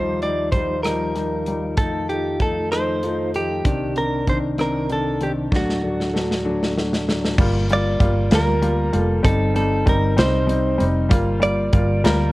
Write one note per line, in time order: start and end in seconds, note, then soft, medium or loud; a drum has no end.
0.00 1.77 D#2 medium
0.00 5.48 D#3 soft
0.00 0.17 F3 medium
0.00 0.17 G3 medium
0.00 1.77 G3 soft
0.00 0.18 D#4 medium
0.00 3.61 F4 medium
0.00 0.22 C5 medium
0.22 0.49 F3 medium
0.22 0.49 G3 medium
0.22 0.49 D#4 medium
0.22 0.52 D5 medium
0.22 closed hi-hat soft
0.52 0.80 F3 medium
0.52 0.80 G3 medium
0.52 0.80 D#4 medium
0.52 0.83 C5 medium
0.52 kick medium
0.52 closed hi-hat soft
0.83 1.11 F3 medium
0.83 1.11 G3 medium
0.83 1.11 D#4 medium
0.83 1.77 A#4 medium
0.83 cross-stick medium
0.83 closed hi-hat medium
1.15 1.41 F3 medium
1.15 1.41 G3 medium
1.15 1.42 D#4 medium
1.15 cross-stick soft
1.15 closed hi-hat soft
1.46 1.73 F3 soft
1.46 1.73 G3 medium
1.46 1.73 D#4 medium
1.46 closed hi-hat soft
1.75 3.62 F2 medium
1.75 2.04 F3 medium
1.75 3.62 A3 soft
1.75 2.04 A3 medium
1.75 2.04 D#4 medium
1.75 2.07 A4 medium
1.75 kick medium
1.75 closed hi-hat medium
2.09 2.35 F3 medium
2.09 2.36 A3 medium
2.09 2.36 D#4 medium
2.09 2.41 G4 medium
2.09 closed hi-hat soft
2.40 2.67 F3 medium
2.40 2.67 A3 medium
2.40 2.67 D#4 medium
2.40 2.71 A4 medium
2.40 kick medium
2.40 closed hi-hat soft
2.72 2.98 F3 medium
2.72 2.98 A3 medium
2.72 2.98 D#4 medium
2.72 3.30 C5 medium
2.72 cross-stick medium
2.72 closed hi-hat medium
3.03 3.29 F3 medium
3.03 3.29 A3 medium
3.03 3.29 D#4 medium
3.03 closed hi-hat soft
3.34 3.60 F3 medium
3.34 3.60 A3 soft
3.34 3.60 D#4 medium
3.34 3.99 G4 medium
3.34 closed hi-hat soft
3.65 5.50 C2 medium
3.65 5.50 C3 medium
3.65 3.91 D#3 medium
3.65 3.91 C4 medium
3.65 5.50 D4 medium
3.65 3.91 D4 medium
3.65 kick medium
3.65 closed hi-hat medium
3.96 4.22 D#3 medium
3.96 4.22 C4 medium
3.96 4.22 D4 medium
3.96 4.29 A#4 medium
3.96 closed hi-hat soft
4.27 4.53 D#3 medium
4.27 4.53 C4 medium
4.27 4.53 D4 medium
4.27 4.37 C5 medium
4.27 kick medium
4.27 closed hi-hat soft
4.58 4.84 D#3 medium
4.58 4.84 C4 medium
4.58 4.84 D4 medium
4.58 4.92 A#4 medium
4.58 cross-stick medium
4.58 closed hi-hat medium
4.89 5.15 D#3 medium
4.89 5.16 C4 medium
4.89 5.16 D4 medium
4.89 5.23 A4 medium
4.89 closed hi-hat soft
5.21 5.47 D#3 medium
5.21 5.47 C4 medium
5.21 5.47 D4 medium
5.21 5.31 G4 medium
5.21 closed hi-hat soft
5.51 7.37 D2 medium
5.51 7.37 A2 soft
5.51 5.78 F#3 medium
5.51 7.37 F#3 soft
5.51 5.78 A3 medium
5.51 7.36 D4 medium
5.51 5.78 D4 medium
5.51 kick medium
5.51 snare soft
5.56 6.74 F#4 medium
5.69 snare soft
5.83 6.09 F#3 medium
5.83 6.09 A3 soft
5.83 6.09 D4 medium
6.00 snare soft
6.13 6.40 F#3 medium
6.13 6.39 A3 medium
6.13 6.40 D4 medium
6.13 snare medium
6.31 snare medium
6.45 6.71 F#3 medium
6.45 6.71 A3 medium
6.45 6.71 D4 medium
6.63 snare medium
6.77 7.02 F#3 medium
6.77 7.03 A3 medium
6.77 7.03 D4 medium
6.77 snare medium
6.93 snare medium
7.08 7.33 F#3 medium
7.08 7.34 A3 soft
7.08 7.34 D4 medium
7.08 snare medium
7.25 snare medium
7.38 7.97 G1 medium
7.38 7.64 G3 medium
7.38 7.65 A#3 medium
7.38 7.65 F4 medium
7.38 kick loud
7.38 crash medium
7.70 7.96 G3 medium
7.70 7.96 A#3 medium
7.70 7.96 F4 medium
7.70 8.35 D5 loud
7.70 closed hi-hat soft
8.00 8.30 G1 loud
8.00 8.26 G3 medium
8.00 8.26 A#3 medium
8.00 8.27 F4 medium
8.00 kick medium
8.00 closed hi-hat soft
8.31 8.90 D2 medium
8.31 8.57 G3 medium
8.31 8.58 A#3 medium
8.31 8.58 F4 medium
8.31 snare loud
8.31 closed hi-hat medium
8.35 8.94 A#4 medium
8.62 8.88 G3 medium
8.62 8.88 A#3 medium
8.62 8.89 F4 medium
8.62 closed hi-hat soft
8.93 9.23 F1 medium
8.93 9.19 G3 medium
8.93 9.19 A#3 medium
8.93 9.19 F4 medium
8.93 9.23 A4 medium
8.93 closed hi-hat medium
9.23 9.83 G1 loud
9.23 9.50 G3 medium
9.23 9.50 C4 medium
9.23 9.50 D#4 medium
9.23 9.54 A4 medium
9.23 kick loud
9.23 closed hi-hat medium
9.54 9.81 G3 medium
9.54 9.82 C4 medium
9.54 9.81 D#4 medium
9.54 9.88 A4 medium
9.54 closed hi-hat soft
9.86 10.16 G1 medium
9.86 10.12 G3 medium
9.86 10.12 C4 medium
9.86 10.12 D#4 medium
9.86 10.18 A#4 medium
9.86 kick medium
9.86 closed hi-hat soft
10.17 10.76 C2 medium
10.17 10.43 G3 medium
10.17 10.43 C4 medium
10.17 10.44 D#4 loud
10.17 10.84 C5 medium
10.17 snare loud
10.17 closed hi-hat medium
10.47 10.74 G3 medium
10.47 10.74 C4 medium
10.47 10.74 D#4 medium
10.47 closed hi-hat soft
10.78 11.11 F1 medium
10.78 11.05 G3 medium
10.78 11.05 C4 medium
10.78 11.05 D#4 medium
10.78 closed hi-hat medium
11.09 11.70 G1 loud
11.09 11.36 G3 medium
11.09 11.37 A#3 medium
11.09 11.37 F4 medium
11.09 kick loud
11.09 closed hi-hat medium
11.40 11.67 G3 medium
11.40 11.67 A#3 medium
11.40 11.67 F4 medium
11.40 12.05 D5 loud
11.40 closed hi-hat soft
11.73 12.03 G1 loud
11.73 11.99 G3 medium
11.73 11.99 A#3 medium
11.73 11.99 F4 medium
11.73 kick medium
11.73 closed hi-hat soft
12.04 12.32 D2 medium
12.04 12.30 G3 medium
12.04 12.30 A#3 medium
12.04 12.30 F4 medium
12.04 12.32 A#4 medium
12.04 snare loud
12.04 closed hi-hat medium